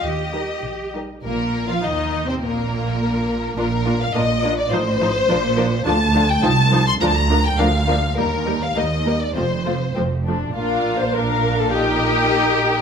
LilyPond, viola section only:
\new Staff \with { instrumentName = "Viola section" } { \time 2/4 \key ees \major \tempo 4 = 103 r8 <g ees'>8 r8 <g ees'>8 | bes8. f'16 ees'8. c'16 | bes2 | <bes d'>8 <bes d'>8 <bes d'>8 <bes d'>8 |
<f ees'>8 <f ees'>8 <f d'>8 <f d'>8 | \key bes \major <f d'>8 <f d'>8 <f ees'>8 <f ees'>8 | <f d'>8 <f d'>8 <f d'>8 <f d'>8 | <g bes>8 <g bes>8 <g bes>8 <g bes>8 |
<f a>8 <f a>8 <f a>8 <f a>8 | <d' bes'>4 <d' bes'>4 | <ees' bes'>2 | }